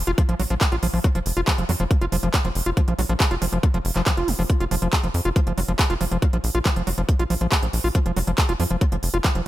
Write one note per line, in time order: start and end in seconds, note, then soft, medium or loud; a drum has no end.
0.07 0.14 F1 loud
0.07 0.11 F4 loud
0.07 closed hi-hat soft
0.18 0.22 F3 loud
0.18 kick loud
0.18 closed hi-hat medium
0.29 0.35 A#1 medium
0.29 0.35 F3 medium
0.29 closed hi-hat soft
0.40 0.46 A#1 loud
0.40 0.42 F#3 loud
0.40 open hi-hat loud
0.50 0.57 A#1 medium
0.50 0.54 F3 loud
0.50 closed hi-hat soft
0.61 kick loud
0.61 clap loud
0.61 closed hi-hat medium
0.72 0.78 A#1 medium
0.72 0.76 F4 loud
0.72 closed hi-hat soft
0.83 0.89 A#1 loud
0.83 0.87 F3 loud
0.83 open hi-hat loud
0.93 1.00 A#1 medium
0.93 1.00 F3 medium
0.93 open hi-hat medium
1.04 1.07 F#3 loud
1.04 kick loud
1.04 closed hi-hat medium
1.15 1.22 F1 medium
1.15 1.19 F3 loud
1.15 closed hi-hat soft
1.26 1.32 F1 medium
1.26 open hi-hat loud
1.37 1.43 F1 medium
1.37 1.41 F4 loud
1.37 closed hi-hat soft
1.47 1.52 F3 loud
1.47 kick loud
1.47 clap loud
1.47 closed hi-hat medium
1.58 1.65 F1 medium
1.58 1.64 F3 medium
1.58 closed hi-hat soft
1.69 1.76 F2 loud
1.69 1.72 F#3 loud
1.69 open hi-hat loud
1.80 1.86 F1 loud
1.80 1.84 F3 loud
1.80 closed hi-hat soft
1.91 kick loud
1.91 closed hi-hat medium
2.01 2.08 F#1 medium
2.01 2.05 F4 medium
2.01 closed hi-hat soft
2.12 2.19 F1 loud
2.12 2.16 F3 loud
2.12 open hi-hat loud
2.23 2.30 F1 medium
2.23 2.29 F3 medium
2.23 closed hi-hat soft
2.34 2.36 F#3 loud
2.34 kick loud
2.34 clap loud
2.34 closed hi-hat medium
2.45 2.51 F1 medium
2.45 2.49 F3 loud
2.45 closed hi-hat soft
2.55 2.62 F1 loud
2.55 open hi-hat loud
2.66 2.73 F1 medium
2.66 2.70 F4 loud
2.66 closed hi-hat soft
2.77 2.81 F3 loud
2.77 kick loud
2.77 closed hi-hat medium
2.88 2.94 A#1 medium
2.88 2.94 F3 medium
2.88 closed hi-hat soft
2.99 3.05 A#1 loud
2.99 3.01 F#3 loud
2.99 open hi-hat loud
3.09 3.16 A#1 medium
3.09 3.13 F3 loud
3.09 closed hi-hat soft
3.20 kick loud
3.20 clap loud
3.20 closed hi-hat medium
3.31 3.37 F1 medium
3.31 3.35 F4 loud
3.31 closed hi-hat soft
3.42 3.48 F1 loud
3.42 3.46 F3 loud
3.42 open hi-hat loud
3.52 3.59 F1 medium
3.52 3.59 F3 medium
3.52 closed hi-hat soft
3.63 3.66 F#3 loud
3.63 kick loud
3.63 closed hi-hat medium
3.74 3.81 F1 medium
3.74 3.78 F3 loud
3.74 closed hi-hat soft
3.85 3.91 F1 loud
3.85 open hi-hat loud
3.96 4.02 F1 medium
3.96 4.02 F3 loud
3.96 clap soft
3.96 closed hi-hat soft
4.06 4.13 F3 medium
4.06 kick loud
4.06 clap loud
4.06 closed hi-hat medium
4.17 4.24 F1 medium
4.17 4.30 F4 medium
4.17 closed hi-hat soft
4.28 4.35 F1 loud
4.28 4.32 F3 medium
4.28 open hi-hat loud
4.39 4.45 F1 medium
4.39 4.43 F3 loud
4.39 open hi-hat medium
4.50 kick loud
4.50 closed hi-hat medium
4.60 4.67 F1 medium
4.60 4.64 F4 loud
4.60 closed hi-hat soft
4.71 4.78 F1 loud
4.71 4.75 F3 loud
4.71 open hi-hat loud
4.82 4.89 F1 medium
4.82 4.88 F3 medium
4.82 closed hi-hat soft
4.93 4.95 F#3 loud
4.93 kick loud
4.93 clap loud
4.93 closed hi-hat medium
5.04 5.10 F1 medium
5.04 5.08 F3 medium
5.04 closed hi-hat soft
5.14 5.21 F2 loud
5.14 open hi-hat loud
5.25 5.32 F1 medium
5.25 5.29 F4 loud
5.25 closed hi-hat soft
5.36 5.40 F3 loud
5.36 kick loud
5.36 closed hi-hat medium
5.47 5.53 F#1 medium
5.47 5.53 F3 medium
5.47 closed hi-hat soft
5.58 5.64 F1 loud
5.58 5.60 F#3 loud
5.58 open hi-hat loud
5.68 5.75 F1 medium
5.68 5.72 F3 medium
5.68 closed hi-hat soft
5.79 kick loud
5.79 clap loud
5.79 closed hi-hat medium
5.90 5.96 F1 medium
5.90 5.94 F4 loud
5.90 closed hi-hat soft
6.01 6.07 F1 loud
6.01 6.05 F3 loud
6.01 open hi-hat loud
6.12 6.18 F1 loud
6.12 6.18 F3 medium
6.12 closed hi-hat soft
6.22 6.25 F#3 loud
6.22 kick loud
6.22 closed hi-hat medium
6.33 6.40 A#1 medium
6.33 6.37 F3 medium
6.33 closed hi-hat soft
6.44 6.50 A#1 medium
6.44 open hi-hat loud
6.55 6.61 A#1 medium
6.55 6.59 F4 loud
6.55 closed hi-hat soft
6.65 6.69 F3 loud
6.65 kick loud
6.65 clap loud
6.65 closed hi-hat medium
6.76 6.83 F1 medium
6.76 6.82 F3 medium
6.76 closed hi-hat soft
6.87 6.94 F1 loud
6.87 6.89 F#3 medium
6.87 open hi-hat loud
6.98 7.04 F1 loud
6.98 7.02 F3 medium
6.98 closed hi-hat soft
7.09 kick loud
7.09 closed hi-hat medium
7.19 7.26 A#1 medium
7.19 7.23 F4 medium
7.19 closed hi-hat soft
7.30 7.37 A#1 loud
7.30 7.34 F3 loud
7.30 open hi-hat medium
7.41 7.48 A#1 medium
7.41 7.47 F3 medium
7.41 closed hi-hat soft
7.52 7.54 F#3 loud
7.52 kick loud
7.52 clap loud
7.52 closed hi-hat medium
7.63 7.69 A#1 medium
7.63 7.67 F3 medium
7.63 closed hi-hat soft
7.73 7.80 A#1 loud
7.73 open hi-hat loud
7.84 7.91 A#1 medium
7.84 7.88 F4 loud
7.84 open hi-hat medium
7.95 7.99 F3 loud
7.95 kick loud
7.95 closed hi-hat medium
8.06 8.12 F1 medium
8.06 8.12 F3 medium
8.06 closed hi-hat soft
8.16 8.23 F1 loud
8.16 8.19 F#3 loud
8.16 open hi-hat loud
8.27 8.34 F1 medium
8.27 8.31 F3 medium
8.27 closed hi-hat soft
8.38 kick loud
8.38 clap loud
8.38 closed hi-hat medium
8.49 8.55 F1 medium
8.49 8.53 F4 loud
8.49 closed hi-hat soft
8.60 8.66 F2 loud
8.60 8.64 F3 loud
8.60 open hi-hat loud
8.70 8.77 F1 medium
8.70 8.77 F3 medium
8.70 closed hi-hat soft
8.81 8.84 F#3 loud
8.81 kick loud
8.81 closed hi-hat medium
8.92 8.99 F#1 medium
8.92 8.96 F3 medium
8.92 closed hi-hat soft
9.03 9.09 F1 loud
9.03 open hi-hat loud
9.14 9.20 F1 medium
9.14 9.18 F4 loud
9.14 closed hi-hat soft
9.24 9.29 F3 loud
9.24 kick loud
9.24 clap loud
9.24 closed hi-hat medium
9.35 9.42 F1 medium
9.35 9.41 F3 medium
9.35 closed hi-hat soft